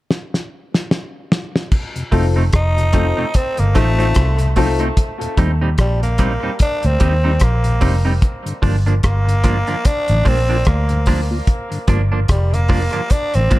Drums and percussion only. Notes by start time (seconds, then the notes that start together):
0.11 snare
0.34 snare
0.74 snare
0.91 snare
1.32 snare
1.56 snare
1.71 kick, crash
1.96 closed hi-hat
2.12 kick, open hi-hat
2.53 kick, cross-stick, closed hi-hat
2.78 closed hi-hat
2.93 kick, closed hi-hat
3.34 kick, closed hi-hat
3.57 closed hi-hat
3.75 kick, cross-stick, closed hi-hat
4.00 closed hi-hat
4.14 kick, cross-stick, closed hi-hat
4.39 closed hi-hat
4.56 kick, open hi-hat
4.79 closed hi-hat
4.97 kick, closed hi-hat
5.21 closed hi-hat
5.37 kick, closed hi-hat
5.78 kick, cross-stick, closed hi-hat
6.03 closed hi-hat
6.18 kick, closed hi-hat
6.59 kick, closed hi-hat
6.83 closed hi-hat
7.00 kick, closed hi-hat
7.40 kick, cross-stick, closed hi-hat
7.64 closed hi-hat
7.81 kick, open hi-hat
8.22 kick, closed hi-hat
8.46 closed hi-hat
8.63 kick, open hi-hat
8.87 closed hi-hat
9.03 kick, cross-stick, closed hi-hat
9.29 closed hi-hat
9.44 kick, closed hi-hat
9.67 closed hi-hat
9.85 kick, closed hi-hat
10.08 closed hi-hat
10.25 kick, open hi-hat
10.65 kick, cross-stick, closed hi-hat
10.89 closed hi-hat
11.06 kick, open hi-hat
11.47 kick, closed hi-hat
11.72 closed hi-hat
11.88 kick, closed hi-hat
12.28 kick, cross-stick, closed hi-hat
12.54 closed hi-hat
12.68 kick, open hi-hat
12.92 closed hi-hat
13.10 kick, closed hi-hat
13.34 closed hi-hat
13.51 kick, closed hi-hat